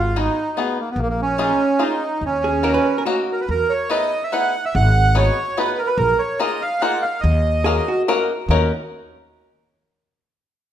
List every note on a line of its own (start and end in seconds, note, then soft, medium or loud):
0.00 0.27 G#1 loud
0.00 0.17 F4 medium
0.16 0.38 B3 medium
0.16 0.38 D#4 medium
0.16 0.59 D#4 loud
0.16 0.38 F#4 medium
0.16 0.38 G#4 medium
0.57 0.79 B3 medium
0.57 0.78 B3 medium
0.57 0.79 D#4 medium
0.57 0.79 F#4 medium
0.57 0.80 G#4 medium
0.80 0.90 A#3 medium
0.91 1.00 B3 medium
0.96 1.50 A#1 loud
0.96 1.01 A#3 loud
1.02 1.08 A#3 medium
1.10 1.21 A#3 medium
1.22 1.83 C#4 loud
1.38 1.61 A#3 medium
1.38 1.61 D#4 medium
1.38 1.61 F4 medium
1.38 1.61 G#4 medium
1.79 2.02 A#3 medium
1.79 2.02 D#4 medium
1.79 2.24 D#4 medium
1.79 2.02 F4 medium
1.79 2.02 G#4 medium
2.21 2.76 D#2 loud
2.26 3.04 C#4 medium
2.44 2.64 G#4 medium
2.63 2.86 A#3 medium
2.63 2.86 C#4 medium
2.63 2.86 D#4 medium
2.63 2.86 F#4 medium
2.63 2.74 A#4 medium
2.74 2.96 B4 loud
2.98 3.02 A#4 medium
3.05 3.29 A#3 medium
3.05 3.29 C#4 medium
3.05 3.29 D#4 medium
3.05 3.45 F#4 medium
3.05 3.29 F#4 medium
3.32 3.41 A#4 medium
3.41 3.50 B4 medium
3.49 3.63 E2 loud
3.49 3.73 A#4 loud
3.70 3.90 C#5 loud
3.90 4.12 B3 medium
3.90 4.13 D#4 medium
3.90 4.13 E4 medium
3.90 4.13 G#4 medium
3.90 4.13 B4 medium
3.90 4.23 D#5 loud
4.24 4.33 E5 medium
4.32 4.55 B3 medium
4.32 4.54 D#4 medium
4.32 4.55 E4 medium
4.32 4.54 G#4 soft
4.32 4.55 B4 medium
4.32 4.65 F#5 loud
4.65 4.74 E5 loud
4.75 5.28 G#1 loud
4.75 5.17 F#5 loud
5.15 5.37 B3 medium
5.15 5.37 D#4 medium
5.15 5.37 F#4 medium
5.15 5.38 G#4 medium
5.15 5.37 B4 medium
5.15 5.59 C#5 loud
5.57 5.79 B3 medium
5.57 5.79 D#4 medium
5.57 5.79 F#4 medium
5.57 5.79 G#4 medium
5.57 5.79 B4 medium
5.57 5.81 B4 medium
5.79 5.88 A#4 medium
5.87 5.97 B4 medium
5.98 6.12 A#1 loud
5.98 6.21 A#4 loud
6.19 6.39 C#5 medium
6.40 6.62 A#3 medium
6.40 6.62 D#4 medium
6.40 6.62 F4 medium
6.40 6.62 G#4 medium
6.40 6.62 A#4 medium
6.40 6.63 D#5 loud
6.62 6.82 F5 loud
6.81 7.04 A#3 medium
6.81 7.04 D#4 medium
6.81 7.04 F4 medium
6.81 7.04 G#4 medium
6.81 7.04 A#4 medium
6.81 7.04 F#5 loud
7.02 7.21 F5 medium
7.21 7.78 D#2 loud
7.21 8.02 D#5 loud
7.64 7.88 A#3 medium
7.64 7.88 C#4 medium
7.64 7.88 D#4 medium
7.64 7.88 F#4 medium
7.64 7.88 G#4 medium
7.64 7.88 A#4 medium
7.88 8.08 F#4 medium
8.08 8.31 A#3 medium
8.08 8.31 C#4 medium
8.08 8.31 D#4 medium
8.08 8.31 F#4 medium
8.08 8.31 A#4 medium
8.08 8.48 A#4 medium
8.49 8.70 D#2 loud
8.49 8.72 C#4 medium
8.49 8.71 D#4 medium
8.49 8.71 F#4 medium
8.49 8.71 A#4 medium